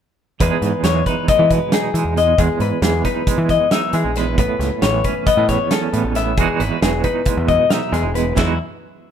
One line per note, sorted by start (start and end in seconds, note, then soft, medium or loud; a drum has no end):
0.40 2.16 E2 medium
0.40 0.50 E2 medium
0.40 0.84 E3 soft
0.40 1.30 G#3 soft
0.40 1.08 D#4 soft
0.40 2.38 G#4 soft
0.40 0.84 B4 medium
0.40 kick medium
0.40 closed hi-hat medium
0.62 0.71 G#2 medium
0.62 closed hi-hat medium
0.83 1.02 E2 medium
0.83 2.82 E3 medium
0.83 1.06 C#5 medium
0.83 snare medium
0.83 closed hi-hat medium
1.06 1.72 D#4 soft
1.06 1.29 B4 medium
1.06 kick medium
1.06 closed hi-hat medium
1.28 1.94 G#3 medium
1.28 1.51 D#5 medium
1.28 kick loud
1.28 closed hi-hat medium
1.39 1.58 E3 medium
1.51 2.36 B2 medium
1.51 1.73 B4 medium
1.51 kick medium
1.51 closed hi-hat medium
1.72 2.37 D#4 medium
1.72 2.17 G#4 medium
1.72 snare loud
1.72 closed hi-hat medium
1.94 2.04 E3 medium
1.94 2.16 G#3 medium
1.94 closed hi-hat medium
2.05 2.33 E2 medium
2.17 2.37 E2 medium
2.17 2.36 G#3 soft
2.17 2.39 D#5 medium
2.17 closed hi-hat medium
2.38 2.48 E2 medium
2.38 4.16 E2 medium
2.38 3.26 G#3 soft
2.38 2.61 G#4 medium
2.38 kick medium
2.38 closed hi-hat medium
2.60 2.70 G#2 medium
2.60 2.83 B4 medium
2.60 closed hi-hat soft
2.82 3.01 E2 medium
2.82 4.83 E3 soft
2.82 3.05 G#4 medium
2.82 snare loud
2.82 closed hi-hat medium
3.05 3.71 D#4 soft
3.05 3.49 B4 medium
3.05 kick medium
3.05 snare soft
3.05 closed hi-hat soft
3.27 3.93 G#3 medium
3.27 kick loud
3.27 closed hi-hat medium
3.38 3.57 E3 medium
3.49 3.72 D#5 medium
3.49 kick medium
3.49 closed hi-hat soft
3.71 4.36 D#4 medium
3.71 3.94 E5 medium
3.71 snare loud
3.71 closed hi-hat medium
3.93 4.03 E3 medium
3.93 4.16 G#3 medium
3.93 4.17 G#4 medium
3.93 closed hi-hat medium
4.04 4.38 A#1 medium
4.16 4.39 E2 medium
4.16 4.36 G#3 soft
4.16 4.38 B4 medium
4.16 snare soft
4.16 closed hi-hat medium
4.38 4.47 A1 medium
4.38 5.50 A2 medium
4.38 5.27 B3 medium
4.38 4.83 B4 medium
4.38 kick medium
4.38 closed hi-hat medium
4.59 4.69 C#2 medium
4.59 snare soft
4.59 closed hi-hat medium
4.82 5.01 A1 medium
4.82 6.38 E3 medium
4.82 5.05 C#5 medium
4.82 snare loud
4.82 closed hi-hat medium
5.04 5.71 C#4 soft
5.04 5.27 B4 medium
5.04 kick medium
5.04 closed hi-hat medium
5.27 5.92 B3 medium
5.27 5.48 D#5 medium
5.27 kick loud
5.27 closed hi-hat medium
5.37 5.56 A2 medium
5.48 6.15 E2 medium
5.48 5.71 C#5 medium
5.48 kick medium
5.48 snare soft
5.48 closed hi-hat medium
5.71 6.35 C#4 medium
5.71 6.15 A4 medium
5.71 snare medium
5.71 closed hi-hat medium
5.93 6.03 A2 medium
5.93 6.16 B3 medium
5.93 closed hi-hat medium
6.04 6.37 A1 medium
6.15 6.38 A2 medium
6.15 6.39 B3 medium
6.15 6.38 E5 medium
6.15 snare soft
6.15 closed hi-hat medium
6.37 6.47 E1 medium
6.37 8.13 E2 medium
6.37 6.81 E3 soft
6.37 7.25 G#3 soft
6.37 7.03 D#4 soft
6.37 8.36 F#4 medium
6.37 6.60 G#4 medium
6.37 kick medium
6.37 closed hi-hat medium
6.60 6.69 G#1 medium
6.60 6.82 B4 medium
6.60 closed hi-hat soft
6.82 7.01 E1 medium
6.82 8.34 E3 medium
6.82 7.04 G#4 medium
6.82 snare loud
6.82 closed hi-hat medium
7.04 7.68 D#4 medium
7.04 7.48 B4 medium
7.04 kick medium
7.04 closed hi-hat medium
7.26 7.91 G#3 medium
7.26 kick medium
7.26 closed hi-hat medium
7.37 7.56 E2 medium
7.47 8.34 B2 soft
7.47 7.71 D#5 medium
7.47 kick medium
7.47 closed hi-hat soft
7.69 8.34 D#4 medium
7.69 7.93 E5 medium
7.69 snare loud
7.69 closed hi-hat medium
7.93 8.02 E2 medium
7.93 8.14 G#3 medium
7.93 8.15 G#4 medium
7.93 snare soft
7.93 closed hi-hat medium
8.03 8.32 E1 medium
8.14 8.34 E2 medium
8.14 8.34 G#3 soft
8.14 8.37 B4 medium
8.14 closed hi-hat medium
8.35 8.56 E2 soft
8.35 8.58 E2 medium
8.35 8.56 E3 soft
8.35 8.57 G#3 soft
8.35 8.57 D#4 soft
8.35 8.58 E4 medium
8.35 8.58 F#4 soft
8.35 kick medium
8.35 snare medium
8.35 ride bell medium